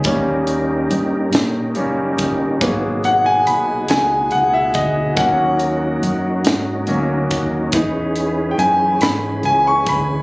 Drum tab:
HH |xxxxxx|xxxxxx|xxxxxx|xxxxxx|
SD |---o--|---o--|---o--|---o--|
BD |o----o|o----o|o----o|o----o|